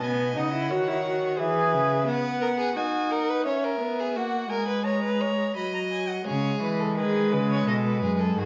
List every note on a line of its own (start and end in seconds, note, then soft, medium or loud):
0.00 0.37 B2 medium
0.00 0.35 B3 medium
0.00 0.71 D#5 medium
0.00 0.39 G#5 medium
0.35 0.72 C#3 medium
0.35 0.53 D#4 medium
0.35 1.41 F#5 medium
0.53 0.72 E4 medium
0.70 1.40 D#3 medium
0.70 0.89 F#4 medium
0.70 1.40 C#5 medium
0.88 1.04 E4 medium
1.05 1.38 F#4 medium
1.38 1.75 E3 medium
1.38 2.06 G#4 loud
1.38 2.07 B4 medium
1.38 2.09 E5 medium
1.73 2.07 C#3 medium
2.07 2.77 B3 medium
2.07 2.41 B4 medium
2.07 2.78 F#5 medium
2.41 2.48 A#4 medium
2.58 2.75 G#4 medium
2.76 3.47 D#4 medium
2.76 3.12 F#4 medium
2.76 3.13 G#5 medium
3.11 3.31 A#4 medium
3.11 3.45 F#5 medium
3.29 3.45 B4 medium
3.46 3.80 C#4 medium
3.46 3.65 C#5 medium
3.46 4.17 E5 medium
3.64 4.01 A#4 medium
3.80 4.17 B3 medium
4.00 4.18 G#4 medium
4.16 4.50 A#3 medium
4.16 4.50 F#4 medium
4.16 4.51 F#5 medium
4.50 5.54 G#3 medium
4.50 4.67 A#4 medium
4.50 4.86 G#5 medium
4.68 4.85 B4 medium
4.84 5.03 C#5 medium
4.84 5.55 A#5 medium
5.04 5.22 B4 medium
5.21 5.56 C#5 medium
5.56 6.25 F#3 medium
5.56 6.26 D#5 medium
5.56 5.73 B5 medium
5.74 5.81 A#5 medium
5.91 6.10 G#5 medium
6.08 6.26 F#5 medium
6.27 6.59 C#3 medium
6.27 8.38 G#3 medium
6.27 6.93 G#4 medium
6.27 6.59 C#5 medium
6.62 6.99 E3 medium
6.62 6.81 B4 medium
6.80 6.97 A4 medium
6.97 7.34 D#3 medium
6.97 7.34 G#4 medium
6.97 7.69 B4 medium
7.33 7.66 C#3 medium
7.33 7.49 B4 medium
7.50 7.67 C#5 medium
7.67 8.04 B2 medium
7.67 8.02 A4 medium
7.67 7.75 D#5 medium
7.85 8.22 B4 medium
8.02 8.36 F#2 medium
8.02 8.37 G#4 medium
8.20 8.40 A4 medium
8.37 8.45 G#2 medium
8.37 8.45 D#3 medium
8.37 8.45 F#4 medium
8.37 8.45 G#4 medium